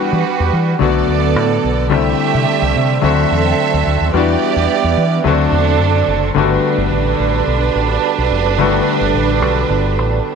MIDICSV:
0, 0, Header, 1, 5, 480
1, 0, Start_track
1, 0, Key_signature, 1, "major"
1, 0, Tempo, 555556
1, 1660, Time_signature, 4, 2, 24, 8
1, 8942, End_track
2, 0, Start_track
2, 0, Title_t, "Violin section"
2, 0, Program_c, 0, 48
2, 0, Note_on_c, 0, 55, 83
2, 0, Note_on_c, 0, 66, 78
2, 0, Note_on_c, 0, 71, 87
2, 677, Note_off_c, 0, 66, 0
2, 678, Note_off_c, 0, 55, 0
2, 678, Note_off_c, 0, 71, 0
2, 701, Note_on_c, 0, 74, 86
2, 703, Note_on_c, 0, 59, 82
2, 704, Note_on_c, 0, 69, 79
2, 1641, Note_off_c, 0, 74, 0
2, 1642, Note_off_c, 0, 59, 0
2, 1643, Note_off_c, 0, 69, 0
2, 1649, Note_on_c, 0, 67, 85
2, 1654, Note_on_c, 0, 76, 95
2, 1657, Note_on_c, 0, 57, 83
2, 2596, Note_off_c, 0, 67, 0
2, 2598, Note_off_c, 0, 76, 0
2, 2599, Note_off_c, 0, 57, 0
2, 2608, Note_on_c, 0, 60, 75
2, 2608, Note_on_c, 0, 69, 82
2, 2609, Note_on_c, 0, 76, 93
2, 3555, Note_off_c, 0, 60, 0
2, 3555, Note_off_c, 0, 69, 0
2, 3555, Note_off_c, 0, 76, 0
2, 3576, Note_on_c, 0, 59, 80
2, 3576, Note_on_c, 0, 74, 102
2, 3578, Note_on_c, 0, 67, 87
2, 4519, Note_off_c, 0, 59, 0
2, 4519, Note_off_c, 0, 74, 0
2, 4520, Note_off_c, 0, 67, 0
2, 4531, Note_on_c, 0, 62, 93
2, 4534, Note_on_c, 0, 69, 87
2, 5477, Note_off_c, 0, 62, 0
2, 5478, Note_off_c, 0, 69, 0
2, 5491, Note_on_c, 0, 71, 91
2, 5495, Note_on_c, 0, 62, 89
2, 8942, Note_off_c, 0, 62, 0
2, 8942, Note_off_c, 0, 71, 0
2, 8942, End_track
3, 0, Start_track
3, 0, Title_t, "French horn section"
3, 0, Program_c, 1, 60
3, 1662, Note_on_c, 1, 69, 64
3, 1665, Note_on_c, 1, 64, 66
3, 1666, Note_on_c, 1, 74, 79
3, 1668, Note_on_c, 1, 60, 79
3, 2613, Note_off_c, 1, 64, 0
3, 3562, Note_off_c, 1, 69, 0
3, 3564, Note_off_c, 1, 74, 0
3, 3565, Note_off_c, 1, 60, 0
3, 3576, Note_on_c, 1, 55, 72
3, 3578, Note_on_c, 1, 62, 72
3, 3580, Note_on_c, 1, 76, 84
3, 4529, Note_off_c, 1, 55, 0
3, 4530, Note_off_c, 1, 62, 0
3, 4531, Note_off_c, 1, 76, 0
3, 4535, Note_on_c, 1, 74, 86
3, 4537, Note_on_c, 1, 69, 65
3, 4541, Note_on_c, 1, 60, 75
3, 5483, Note_off_c, 1, 69, 0
3, 5488, Note_off_c, 1, 74, 0
3, 5491, Note_off_c, 1, 60, 0
3, 5491, Note_on_c, 1, 62, 70
3, 5493, Note_on_c, 1, 69, 86
3, 5494, Note_on_c, 1, 55, 82
3, 5494, Note_on_c, 1, 59, 68
3, 5495, Note_on_c, 1, 66, 68
3, 8942, Note_off_c, 1, 55, 0
3, 8942, Note_off_c, 1, 59, 0
3, 8942, Note_off_c, 1, 62, 0
3, 8942, Note_off_c, 1, 66, 0
3, 8942, Note_off_c, 1, 69, 0
3, 8942, End_track
4, 0, Start_track
4, 0, Title_t, "Grand piano"
4, 0, Program_c, 2, 0
4, 0, Control_c, 2, 64, 127
4, 0, Note_on_c, 2, 52, 76
4, 0, Note_on_c, 2, 55, 62
4, 0, Note_on_c, 2, 59, 71
4, 0, Note_on_c, 2, 62, 68
4, 0, Note_on_c, 2, 66, 90
4, 671, Note_off_c, 2, 52, 0
4, 674, Note_off_c, 2, 55, 0
4, 676, Note_off_c, 2, 59, 0
4, 681, Note_off_c, 2, 62, 0
4, 682, Note_on_c, 2, 50, 78
4, 682, Note_on_c, 2, 54, 68
4, 685, Note_off_c, 2, 66, 0
4, 692, Note_on_c, 2, 57, 67
4, 699, Note_on_c, 2, 59, 70
4, 709, Control_c, 2, 64, 0
4, 709, Note_on_c, 2, 66, 90
4, 861, Control_c, 2, 64, 127
4, 1624, Note_off_c, 2, 50, 0
4, 1632, Note_off_c, 2, 54, 0
4, 1637, Note_off_c, 2, 57, 0
4, 1637, Note_on_c, 2, 50, 83
4, 1640, Note_off_c, 2, 59, 0
4, 1642, Note_on_c, 2, 55, 78
4, 1645, Note_off_c, 2, 66, 0
4, 1651, Note_on_c, 2, 57, 76
4, 1656, Note_on_c, 2, 60, 72
4, 1660, Note_on_c, 2, 64, 77
4, 1670, Control_c, 2, 64, 0
4, 1846, Control_c, 2, 64, 127
4, 2589, Note_off_c, 2, 50, 0
4, 2592, Note_off_c, 2, 55, 0
4, 2596, Note_off_c, 2, 57, 0
4, 2599, Note_off_c, 2, 60, 0
4, 2601, Note_off_c, 2, 64, 0
4, 2603, Note_on_c, 2, 50, 76
4, 2605, Note_on_c, 2, 54, 75
4, 2611, Note_on_c, 2, 57, 73
4, 2621, Note_on_c, 2, 60, 67
4, 2626, Note_on_c, 2, 66, 91
4, 2632, Control_c, 2, 64, 0
4, 2776, Control_c, 2, 64, 127
4, 3552, Note_off_c, 2, 50, 0
4, 3553, Note_off_c, 2, 54, 0
4, 3556, Note_off_c, 2, 57, 0
4, 3562, Note_off_c, 2, 60, 0
4, 3564, Note_off_c, 2, 66, 0
4, 3575, Note_on_c, 2, 55, 68
4, 3576, Note_on_c, 2, 52, 84
4, 3584, Note_on_c, 2, 59, 67
4, 3590, Control_c, 2, 64, 0
4, 3592, Note_on_c, 2, 62, 75
4, 3597, Note_on_c, 2, 66, 88
4, 3725, Control_c, 2, 64, 127
4, 4519, Note_off_c, 2, 52, 0
4, 4519, Note_off_c, 2, 55, 0
4, 4523, Note_off_c, 2, 59, 0
4, 4527, Note_off_c, 2, 62, 0
4, 4527, Note_on_c, 2, 50, 72
4, 4527, Note_on_c, 2, 54, 72
4, 4530, Note_off_c, 2, 66, 0
4, 4532, Note_on_c, 2, 57, 75
4, 4544, Note_on_c, 2, 60, 70
4, 4553, Control_c, 2, 64, 0
4, 4553, Note_on_c, 2, 66, 92
4, 4698, Control_c, 2, 64, 127
4, 5470, Note_off_c, 2, 50, 0
4, 5475, Note_off_c, 2, 54, 0
4, 5477, Note_off_c, 2, 57, 0
4, 5483, Note_off_c, 2, 60, 0
4, 5483, Note_on_c, 2, 50, 87
4, 5488, Note_off_c, 2, 66, 0
4, 5493, Note_on_c, 2, 55, 73
4, 5497, Note_on_c, 2, 57, 76
4, 5507, Note_on_c, 2, 59, 66
4, 5511, Control_c, 2, 64, 0
4, 5513, Note_on_c, 2, 66, 91
4, 5656, Control_c, 2, 64, 127
4, 7378, Note_off_c, 2, 50, 0
4, 7383, Note_off_c, 2, 55, 0
4, 7385, Note_off_c, 2, 57, 0
4, 7390, Note_off_c, 2, 59, 0
4, 7393, Note_off_c, 2, 66, 0
4, 7415, Note_on_c, 2, 50, 80
4, 7423, Note_on_c, 2, 55, 70
4, 7427, Note_on_c, 2, 57, 71
4, 7438, Note_on_c, 2, 59, 74
4, 7438, Note_on_c, 2, 66, 90
4, 8942, Note_off_c, 2, 50, 0
4, 8942, Note_off_c, 2, 55, 0
4, 8942, Note_off_c, 2, 57, 0
4, 8942, Note_off_c, 2, 59, 0
4, 8942, Note_off_c, 2, 66, 0
4, 8942, End_track
5, 0, Start_track
5, 0, Title_t, "Fingered electric bass"
5, 0, Program_c, 3, 33
5, 108, Note_on_c, 3, 52, 99
5, 192, Note_off_c, 3, 52, 0
5, 344, Note_on_c, 3, 40, 81
5, 430, Note_off_c, 3, 40, 0
5, 458, Note_on_c, 3, 52, 90
5, 639, Note_off_c, 3, 52, 0
5, 697, Note_on_c, 3, 35, 102
5, 879, Note_off_c, 3, 35, 0
5, 935, Note_on_c, 3, 38, 89
5, 1176, Note_off_c, 3, 38, 0
5, 1176, Note_on_c, 3, 45, 92
5, 1358, Note_off_c, 3, 45, 0
5, 1418, Note_on_c, 3, 35, 87
5, 1656, Note_off_c, 3, 35, 0
5, 1656, Note_on_c, 3, 36, 111
5, 1838, Note_off_c, 3, 36, 0
5, 2025, Note_on_c, 3, 48, 100
5, 2111, Note_off_c, 3, 48, 0
5, 2263, Note_on_c, 3, 36, 79
5, 2349, Note_off_c, 3, 36, 0
5, 2383, Note_on_c, 3, 48, 97
5, 2563, Note_off_c, 3, 48, 0
5, 2619, Note_on_c, 3, 38, 119
5, 2800, Note_off_c, 3, 38, 0
5, 2863, Note_on_c, 3, 40, 92
5, 3043, Note_off_c, 3, 40, 0
5, 3229, Note_on_c, 3, 38, 91
5, 3313, Note_off_c, 3, 38, 0
5, 3341, Note_on_c, 3, 38, 81
5, 3436, Note_off_c, 3, 38, 0
5, 3465, Note_on_c, 3, 39, 80
5, 3551, Note_off_c, 3, 39, 0
5, 3575, Note_on_c, 3, 40, 115
5, 3758, Note_off_c, 3, 40, 0
5, 3943, Note_on_c, 3, 40, 88
5, 4029, Note_off_c, 3, 40, 0
5, 4182, Note_on_c, 3, 40, 91
5, 4269, Note_off_c, 3, 40, 0
5, 4297, Note_on_c, 3, 52, 90
5, 4479, Note_off_c, 3, 52, 0
5, 4532, Note_on_c, 3, 38, 105
5, 4716, Note_off_c, 3, 38, 0
5, 4769, Note_on_c, 3, 40, 92
5, 5015, Note_off_c, 3, 40, 0
5, 5015, Note_on_c, 3, 42, 96
5, 5198, Note_off_c, 3, 42, 0
5, 5251, Note_on_c, 3, 30, 93
5, 5435, Note_off_c, 3, 30, 0
5, 5491, Note_on_c, 3, 31, 124
5, 5675, Note_off_c, 3, 31, 0
5, 5857, Note_on_c, 3, 31, 94
5, 5946, Note_off_c, 3, 31, 0
5, 5973, Note_on_c, 3, 33, 101
5, 6157, Note_off_c, 3, 33, 0
5, 6218, Note_on_c, 3, 33, 91
5, 6400, Note_off_c, 3, 33, 0
5, 6456, Note_on_c, 3, 35, 93
5, 6639, Note_off_c, 3, 35, 0
5, 6699, Note_on_c, 3, 33, 103
5, 6880, Note_off_c, 3, 33, 0
5, 7069, Note_on_c, 3, 35, 75
5, 7154, Note_off_c, 3, 35, 0
5, 7179, Note_on_c, 3, 29, 88
5, 7305, Note_off_c, 3, 29, 0
5, 7305, Note_on_c, 3, 30, 101
5, 7415, Note_off_c, 3, 30, 0
5, 7415, Note_on_c, 3, 31, 105
5, 7598, Note_off_c, 3, 31, 0
5, 7784, Note_on_c, 3, 31, 91
5, 7870, Note_off_c, 3, 31, 0
5, 7899, Note_on_c, 3, 33, 90
5, 8138, Note_off_c, 3, 33, 0
5, 8138, Note_on_c, 3, 35, 85
5, 8320, Note_off_c, 3, 35, 0
5, 8379, Note_on_c, 3, 31, 109
5, 8626, Note_off_c, 3, 31, 0
5, 8626, Note_on_c, 3, 33, 90
5, 8806, Note_off_c, 3, 33, 0
5, 8942, End_track
0, 0, End_of_file